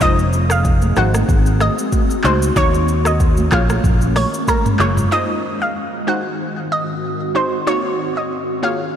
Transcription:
0.01 fingered electric bass F1, synth pluck G#3 D#4 F4 C5 D#5, ambient pad C4, kick, low conga, shaker
0.19 shaker
0.33 shaker
0.50 synth pluck F5, cross-stick, shaker
0.65 kick, shaker
0.82 high conga, shaker
0.96 fingered electric bass G#1, synth pluck G#3 D#4 F#4 C5 F#5, ambient pad G#3 F#4, cross-stick, low conga, shaker
1.14 cross-stick, high conga, shaker
1.29 fingered electric bass G#1, kick, shaker
1.46 shaker
1.60 synth pluck D#5, cross-stick, high conga, shaker
1.78 shaker
1.92 kick, high conga, shaker
2.10 shaker
2.24 fingered electric bass C#2, synth pluck G#3 D#4 F#4 C5, clap, high conga, shaker
2.42 shaker
2.56 fingered electric bass D#2, synth pluck A#3 D#4 F#4 C#5, ambient pad C#4, kick, low conga, shaker
2.74 shaker
2.88 shaker
3.05 synth pluck D#5, cross-stick, shaker
3.20 kick, shaker
3.37 high conga, shaker
3.51 fingered electric bass A#1, ambient pad G#3 A#3, synth pluck A#3 F4 G#4 C#5 F5, kick, cross-stick, clap, low conga, shaker
3.70 cross-stick, high conga, shaker
3.84 fingered electric bass A#1, kick, mid tom, shaker
4.01 shaker
4.16 synth pluck C#5, cross-stick, open hi-hat, high conga, shaker
4.34 shaker
4.48 synth pluck A#4, kick, cross-stick, high conga, shaker
4.66 mid tom, shaker
4.79 fingered electric bass F#1, synth pluck A#3 F4 G#4 C#5, clap, high conga, shaker
4.97 mid tom, shaker
5.11 ambient pad D#3, synth pluck G#3 D#4 F4 C5 D#5
5.62 synth pluck F5
6.07 ambient pad G#2 C4 F#4, synth pluck G#3 D#4 F#4 C5 F#5
6.72 synth pluck D#5
7.35 synth pluck G#3 D#4 F#4 C5
7.67 synth pluck A#3 D#4 F#4 C#5
8.17 synth pluck D#5
8.62 ambient pad A#2 F3 C#4 G#4, synth pluck A#3 F4 G#4 C#5 F5

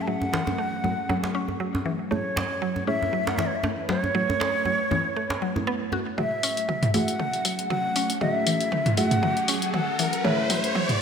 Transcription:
Already playing: ambient pad F#3 A3 C#4 G#4
0.01 bansuri A5
0.07 synth arpeggio sound F#3, synth stab A3 F#4 G#4 E5, bansuri F#5
0.22 djembe tone
0.33 synth arpeggio sound E3, djembe slap
0.47 djembe tone
0.58 synth arpeggio sound A3
0.84 synth arpeggio sound F#3, synth stab A3 F#4 G#4 E5, djembe tone
1.09 synth arpeggio sound F#3, djembe tone
1.24 djembe slap
1.35 synth arpeggio sound C#4
1.48 djembe tone
1.60 synth arpeggio sound F#3
1.75 djembe tone
1.86 synth arpeggio sound E3
2.11 synth arpeggio sound A3, synth stab A3 E4 G#4 C#5, ambient pad A3 E4 B4 C#5, bansuri C#5, djembe tone
2.36 synth arpeggio sound F#3, djembe slap, djembe tone
2.62 synth arpeggio sound F#3
2.76 djembe tone
2.87 synth stab A3 E4 G#4 C#5, synth arpeggio sound C#4, bansuri E5
3.02 djembe tone
3.13 synth arpeggio sound F#3
3.27 bansuri F#5, djembe slap
3.37 synth arpeggio sound E3, bansuri E5, djembe slap, djembe tone
3.46 bansuri C#5
3.55 bansuri E5
3.64 synth arpeggio sound A3, djembe tone
3.89 synth arpeggio sound F#3, bansuri C#5, djembe slap
4.04 djembe tone
4.15 synth arpeggio sound F#3, synth stab A3 E4 G#4 C#5
4.30 djembe tone
4.40 synth arpeggio sound C#4, djembe slap
4.65 synth arpeggio sound F#3, djembe tone
4.91 synth arpeggio sound E3, synth stab A3 E4 G#4 C#5, djembe tone
5.16 synth arpeggio sound A3
5.30 djembe slap, djembe tone
5.42 synth arpeggio sound F#3
5.56 synth stab A3 E4 G#4 C#5, djembe tone
5.67 synth arpeggio sound B3
5.92 synth arpeggio sound F#4, djembe tone
6.18 synth arpeggio sound F#3, ambient pad F#3 A3 C#4 G#4, synth stab A3 F#4 G#4 E5, bansuri E5, kick, mid tom, riser
6.43 synth arpeggio sound C#4, open hi-hat
6.57 closed hi-hat
6.69 synth arpeggio sound F#3, kick, mid tom
6.83 closed hi-hat, mid tom
6.94 synth arpeggio sound E3, synth stab A3 F#4 G#4 E5, bansuri F#5, open hi-hat
7.08 closed hi-hat
7.20 synth arpeggio sound A3, kick, mid tom
7.33 closed hi-hat
7.45 synth arpeggio sound F#3, kick, open hi-hat
7.59 closed hi-hat
7.70 synth arpeggio sound F#3, bansuri F#5, kick, mid tom
7.96 synth arpeggio sound C#4, open hi-hat
8.10 closed hi-hat
8.21 synth arpeggio sound F#3, synth stab A3 F#4 G#4 E5, bansuri E5, kick, mid tom
8.47 synth arpeggio sound E3, open hi-hat
8.61 closed hi-hat
8.72 synth arpeggio sound A3, kick, mid tom
8.86 closed hi-hat, mid tom
8.97 synth arpeggio sound F#3, synth stab A3 F#4 G#4 E5, bansuri F#5, open hi-hat
9.11 closed hi-hat, mid tom
9.23 synth arpeggio sound F#3, kick, mid tom
9.37 closed hi-hat
9.48 synth arpeggio sound C#4, open hi-hat
9.62 closed hi-hat
9.74 synth arpeggio sound F#3, bansuri F#5, kick, mid tom
9.99 synth arpeggio sound E3, open hi-hat
10.13 closed hi-hat
10.24 synth stab A3 E4 G#4 C#5, ambient pad A3 E4 B4 C#5, synth arpeggio sound A3, bansuri E5, kick, mid tom
10.50 synth arpeggio sound F#3, open hi-hat, mid tom
10.64 closed hi-hat
10.75 synth arpeggio sound F#3, kick, mid tom
10.89 closed hi-hat, mid tom

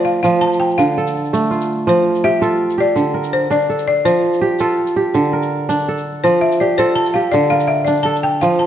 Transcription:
Already playing: kora F3 A3 F4 D5
0.05 balafon F5, shaker
0.23 kora F3, balafon F5, shaker
0.41 balafon A5
0.53 shaker
0.60 balafon G5
0.70 shaker
0.78 kora D3, balafon F5, shaker
0.98 kora A4, shaker
1.07 shaker
1.16 shaker
1.25 shaker
1.33 kora A3, shaker
1.51 kora F4, shaker
1.61 shaker
1.87 kora F3, balafon C5, shaker
2.15 shaker
2.24 kora G4, balafon E5, shaker
2.42 kora F4 A4, shaker
2.70 shaker
2.78 kora G4, balafon D5
2.96 kora D3, shaker
3.14 kora A#4
3.24 shaker
3.33 balafon C5
3.51 kora D4, balafon D5, shaker
3.61 shaker
3.70 kora A4, shaker
3.79 shaker
3.88 balafon D5
4.05 kora F3, balafon C5, shaker
4.33 shaker
4.41 kora G4
4.59 kora F4 A4, shaker
4.87 shaker
4.96 kora G4
5.14 kora D3, shaker
5.24 shaker
5.33 kora A#4
5.43 shaker
5.69 kora D4, shaker
5.80 shaker
5.88 kora A4, shaker
5.98 shaker
6.24 kora F3, balafon C5, shaker
6.41 balafon E5
6.52 shaker
6.60 kora G4, balafon D5, shaker
6.78 kora F4 A4, balafon C5, shaker
6.95 balafon A5
7.06 shaker
7.14 kora G4, balafon F5
7.32 kora D3, balafon D5, shaker
7.42 shaker
7.50 kora A#4, balafon F5
7.60 shaker
7.68 balafon E5
7.85 kora D4, balafon D5, shaker
7.97 shaker
8.03 kora A4, balafon A5, shaker
8.16 shaker
8.23 balafon G5
8.41 kora F3, balafon F5, shaker
8.53 shaker
8.59 balafon A5

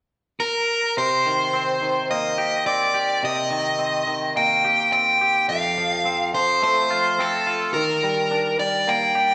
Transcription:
0.40 overdriven electric guitar A#4
0.97 clean electric guitar C3, overdriven electric guitar C5
1.26 clean electric guitar D#3
1.53 clean electric guitar C4
1.82 clean electric guitar D#3
2.10 clean electric guitar A#3, overdriven electric guitar D#5
2.38 clean electric guitar G4
2.66 clean electric guitar C4, overdriven electric guitar D5
2.94 clean electric guitar G4
3.23 clean electric guitar C3, overdriven electric guitar D#5
3.51 clean electric guitar D#3
3.79 clean electric guitar C4
4.07 clean electric guitar D#3
4.36 clean electric guitar A#3, overdriven electric guitar G5
4.65 clean electric guitar G4
4.93 clean electric guitar C4, overdriven electric guitar G5
5.21 clean electric guitar G4
5.49 clean electric guitar F2, overdriven electric guitar F5
5.78 clean electric guitar F3
6.05 clean electric guitar C4
6.34 clean electric guitar F3, overdriven electric guitar C5
6.62 clean electric guitar A3, overdriven electric guitar C5
6.90 clean electric guitar F4
7.18 clean electric guitar C4, overdriven electric guitar A4
7.47 clean electric guitar F4
7.74 clean electric guitar D#3, overdriven electric guitar A#4
8.03 clean electric guitar G3
8.31 clean electric guitar D4
8.59 clean electric guitar G3, overdriven electric guitar D5
8.88 clean electric guitar A#3, overdriven electric guitar G5
9.15 clean electric guitar G4

